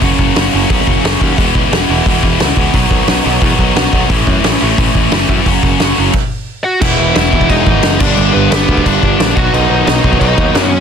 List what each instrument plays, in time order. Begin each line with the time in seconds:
0.02 picked electric bass F#1, distorted electric guitar F#2 C#3 F#3 A#3 C#4 F#4, kick, open hi-hat
0.19 picked electric bass F#1, kick
0.36 picked electric bass F#1, distorted electric guitar F#2 C#3 F#3 A#3 C#4 F#4, snare, open hi-hat
0.53 picked electric bass F#1, distorted electric guitar F#2 C#3 F#3 A#3 C#4 F#4
0.70 picked electric bass B1, distorted electric guitar F#2 C#3 F#3 A#3 C#4 F#4, kick, open hi-hat
0.87 picked electric bass F#1, kick
1.03 picked electric bass F#1, distorted electric guitar F#2 C#3 F#3 A#3 C#4 F#4, snare, open hi-hat
1.20 picked electric bass D#2, distorted electric guitar F#2 C#3 F#3 A#3 C#4 F#4, kick
1.37 picked electric bass E1, distorted electric guitar E2 B2 E3 G#3 B3 E4, kick, open hi-hat
1.55 picked electric bass C#2, kick
1.71 picked electric bass E1, distorted electric guitar E2 B2 E3 G#3 B3 E4, snare, open hi-hat
1.89 picked electric bass E1, distorted electric guitar E2 B2 E3 G#3 B3 E4
2.06 picked electric bass E1, distorted electric guitar E2 B2 E3 G#3 B3 E4, kick, open hi-hat
2.23 picked electric bass E1, kick
2.40 picked electric bass C#2, distorted electric guitar E2 B2 E3 G#3 B3 E4, snare, open hi-hat
2.56 picked electric bass C#2, distorted electric guitar E2 B2 E3 G#3 B3 E4, kick
2.73 picked electric bass B1, distorted electric guitar B2 D#3 F#3 B3 D#4, kick, open hi-hat
2.91 picked electric bass B1, kick
3.07 picked electric bass B1, distorted electric guitar B2 D#3 F#3 B3 D#4, snare, open hi-hat
3.24 picked electric bass B1, distorted electric guitar B2 D#3 F#3 B3 D#4
3.41 picked electric bass E2, distorted electric guitar B2 D#3 F#3 B3 D#4, kick, open hi-hat
3.59 picked electric bass B1, kick
3.75 picked electric bass B1, distorted electric guitar B2 D#3 F#3 B3 D#4, snare, open hi-hat
3.92 picked electric bass B1, distorted electric guitar B2 D#3 F#3 B3 D#4, kick
4.09 picked electric bass A1, distorted electric guitar A2 E3 A3 C#4 E4, kick, open hi-hat
4.27 picked electric bass F#2, kick
4.43 picked electric bass A1, distorted electric guitar A2 E3 A3 C#4 E4, snare, open hi-hat
4.60 picked electric bass A1, distorted electric guitar A2 E3 A3 C#4 E4
4.77 picked electric bass A1, distorted electric guitar A2 E3 A3 C#4 E4, kick, open hi-hat
4.95 picked electric bass A1, kick
5.11 picked electric bass F#1, distorted electric guitar A2 E3 A3 C#4 E4, snare, open hi-hat
5.29 picked electric bass F#2, distorted electric guitar A2 E3 A3 C#4 E4, kick
5.46 picked electric bass F#1, distorted electric guitar F#2 C#3 F#3 A#3 C#4 F#4, kick, open hi-hat
5.63 picked electric bass F#1, kick
5.80 picked electric bass F#1, distorted electric guitar F#2 C#3 F#3 A#3 C#4 F#4, snare, open hi-hat
5.97 picked electric bass F#1, distorted electric guitar F#2 C#3 F#3 A#3 C#4 F#4
6.13 kick, crash
6.64 lead electric guitar F#4 F#5
6.81 picked electric bass E1, distorted electric guitar E2 B2 E3 G#3 B3 E4, lead electric guitar E4 E5, kick, crash
6.99 picked electric bass E1
7.15 picked electric bass E1, lead electric guitar E4 E5, snare, crash
7.33 picked electric bass E1, distorted electric guitar E2 B2 E3, kick
7.41 kick
7.49 picked electric bass E1, distorted electric guitar E3 G#3 B3 E4, lead electric guitar D#4 D#5, kick, crash
7.67 picked electric bass G#1, kick
7.83 picked electric bass F#1, snare, crash
8.00 picked electric bass G1, distorted electric guitar G2 D3 G3 B3 D4, lead electric guitar D4 D5, kick, crash
8.17 picked electric bass G1, crash
8.33 picked electric bass G1, lead electric guitar B3 B4
8.51 picked electric bass G1, distorted electric guitar G2 D3 G3, lead electric guitar B3 B4, snare, crash
8.68 picked electric bass D2, distorted electric guitar G2 D3 G3 B3 D4, kick
8.77 kick
8.85 picked electric bass G1, lead electric guitar D4 D5, kick, crash
9.03 picked electric bass G1, kick
9.20 picked electric bass A#1, snare, crash
9.36 picked electric bass B1, distorted electric guitar B2 D#3 F#3 B3 D#4, lead electric guitar F#4 F#5, kick
9.53 picked electric bass B1, lead electric guitar D#4 D#5, crash
9.70 picked electric bass B1
9.86 picked electric bass B1, distorted electric guitar B2 F#3, lead electric guitar D#4 D#5, snare, crash
9.90 distorted electric guitar B3
10.04 picked electric bass B1, distorted electric guitar B2 D#3 F#3 B3 D#4, kick
10.13 kick
10.19 picked electric bass B1, lead electric guitar D#4 D#5, kick, crash
10.38 picked electric bass D#2, kick
10.55 picked electric bass F#2, snare, crash
10.68 lead electric guitar C#4 C#5